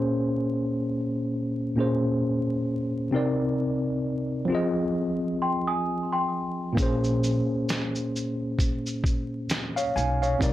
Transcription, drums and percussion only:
6.77 kick, closed hi-hat, shaker
7.04 shaker
7.24 shaker
7.69 snare, closed hi-hat, shaker
7.95 shaker
8.16 shaker
8.59 kick, closed hi-hat, shaker
8.86 shaker
9.04 kick, shaker
9.50 snare, closed hi-hat, shaker
9.77 shaker
9.97 shaker
10.23 shaker
10.41 kick, closed hi-hat, shaker

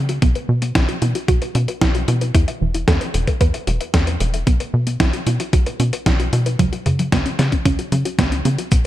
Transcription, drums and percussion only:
0.09 closed hi-hat
0.22 kick, closed hi-hat
0.35 closed hi-hat
0.62 closed hi-hat
0.75 kick, snare, closed hi-hat
0.89 closed hi-hat
1.02 closed hi-hat
1.15 closed hi-hat
1.28 kick, closed hi-hat
1.42 closed hi-hat
1.55 closed hi-hat
1.68 closed hi-hat
1.81 kick, snare, closed hi-hat
1.95 closed hi-hat
2.08 closed hi-hat
2.21 closed hi-hat
2.35 kick, closed hi-hat
2.48 closed hi-hat
2.74 closed hi-hat
2.88 kick, snare, closed hi-hat
3.01 closed hi-hat
3.14 closed hi-hat
3.27 kick, closed hi-hat
3.41 kick, closed hi-hat
3.54 closed hi-hat
3.67 closed hi-hat
3.81 closed hi-hat
3.94 kick, snare, closed hi-hat
4.07 closed hi-hat
4.20 closed hi-hat
4.34 closed hi-hat
4.47 kick, closed hi-hat
4.60 closed hi-hat
4.87 closed hi-hat
5.00 kick, snare, closed hi-hat
5.13 closed hi-hat
5.27 closed hi-hat
5.40 closed hi-hat
5.53 kick, closed hi-hat
5.66 closed hi-hat
5.80 closed hi-hat
5.93 closed hi-hat
6.06 kick, snare, closed hi-hat
6.20 closed hi-hat
6.33 closed hi-hat
6.46 closed hi-hat
6.59 kick, closed hi-hat
6.73 closed hi-hat
6.86 closed hi-hat
6.99 closed hi-hat
7.12 kick, snare, closed hi-hat
7.26 closed hi-hat
7.39 snare, closed hi-hat
7.52 kick, closed hi-hat
7.66 kick, closed hi-hat
7.79 closed hi-hat
7.92 closed hi-hat
8.05 closed hi-hat
8.19 kick, snare, closed hi-hat
8.32 closed hi-hat
8.45 closed hi-hat
8.58 closed hi-hat
8.72 kick, closed hi-hat, cabasa

